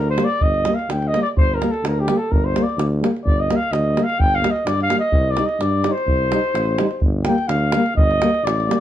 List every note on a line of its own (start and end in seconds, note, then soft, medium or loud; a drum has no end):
0.00 0.19 D2 medium
0.10 0.26 C5 medium
0.17 0.27 G3 medium
0.17 0.27 A#3 medium
0.17 davul high medium
0.25 0.44 D5 medium
0.30 davul high soft
0.41 0.67 G1 medium
0.41 0.76 D#5 medium
0.41 davul low medium
0.54 davul high soft
0.65 0.75 G3 medium
0.65 0.76 A#3 medium
0.65 davul high medium
0.75 0.93 F5 medium
0.79 davul high soft
0.89 1.15 D2 medium
0.89 1.09 G5 medium
0.89 davul high medium
1.02 davul high soft
1.08 1.21 D#5 medium
1.13 1.23 G3 soft
1.13 1.22 A#3 soft
1.13 davul high medium
1.22 1.28 D5 medium
1.26 davul high soft
1.36 1.62 G1 medium
1.36 1.56 C5 medium
1.36 davul low medium
1.54 1.72 A#4 medium
1.61 1.70 G3 soft
1.61 1.70 A#3 medium
1.61 davul high medium
1.71 1.85 A4 medium
1.71 davul high soft
1.83 2.09 D2 medium
1.83 davul high medium
1.87 2.01 A#4 medium
2.00 2.18 G4 medium
2.08 2.17 G3 medium
2.08 2.17 A#3 medium
2.08 davul high medium
2.17 2.33 A4 medium
2.30 2.56 G1 medium
2.30 2.46 A#4 medium
2.30 davul low medium
2.45 2.65 C5 medium
2.55 2.64 G3 medium
2.55 2.65 A#3 medium
2.55 davul high medium
2.63 2.86 D5 medium
2.69 davul high soft
2.77 3.03 D2 medium
2.77 davul high medium
3.01 3.10 G3 medium
3.01 3.10 A#3 medium
3.01 davul high medium
3.17 davul high soft
3.25 3.51 G1 medium
3.25 3.42 D5 medium
3.25 davul low medium
3.40 3.57 D#5 medium
3.48 3.58 G3 medium
3.48 3.58 A#3 medium
3.48 davul high medium
3.56 3.73 F5 medium
3.63 davul high soft
3.72 3.98 D2 medium
3.72 4.05 D#5 medium
3.72 davul high medium
3.95 4.05 G3 medium
3.95 4.05 A#3 medium
3.95 davul high medium
4.03 4.21 F5 medium
4.09 davul high soft
4.19 4.45 G1 medium
4.19 4.36 G5 loud
4.19 davul low medium
4.33 4.52 F5 medium
4.33 davul high soft
4.41 4.52 G3 medium
4.41 4.51 A#3 medium
4.41 davul high medium
4.50 4.68 D#5 medium
4.56 davul high soft
4.65 4.91 G2 medium
4.65 4.82 D5 medium
4.65 davul high medium
4.81 4.97 F5 loud
4.81 davul high soft
4.90 4.99 G3 medium
4.90 4.99 A#3 soft
4.90 davul high medium
4.99 5.32 D#5 medium
4.99 davul high soft
5.12 5.38 C2 medium
5.12 davul low medium
5.31 5.47 D5 medium
5.37 5.46 G3 medium
5.37 5.46 D#4 medium
5.37 davul high medium
5.45 5.63 D#5 medium
5.45 davul high soft
5.60 5.86 G2 medium
5.60 5.93 D5 medium
5.60 davul high medium
5.84 5.93 G3 medium
5.84 5.93 D#4 medium
5.84 davul high medium
5.92 7.10 C5 medium
5.98 davul high soft
6.07 6.33 C2 medium
6.07 davul low medium
6.30 6.40 G3 medium
6.30 6.41 D#4 medium
6.30 davul high medium
6.44 davul high soft
6.53 6.80 A1 medium
6.53 davul high medium
6.78 6.88 G3 medium
6.78 6.88 D#4 medium
6.78 davul high medium
6.91 davul high soft
7.00 7.27 G1 medium
7.00 davul low medium
7.24 7.36 G3 medium
7.24 7.36 A#3 medium
7.24 7.50 G5 medium
7.24 davul high medium
7.38 davul high soft
7.48 7.75 D2 medium
7.48 7.96 F5 medium
7.48 davul high medium
7.72 7.83 G3 soft
7.72 7.83 A#3 medium
7.72 davul high loud
7.86 davul high soft
7.96 8.22 G1 medium
7.96 8.46 D#5 loud
7.96 davul low medium
8.11 davul high soft
8.20 8.31 G3 medium
8.20 8.29 A#3 medium
8.20 davul high medium
8.34 davul high soft
8.43 8.69 A1 medium
8.43 8.80 D5 medium
8.43 davul high medium
8.60 davul high soft
8.67 8.78 G3 medium
8.67 8.77 A#3 medium
8.67 davul high medium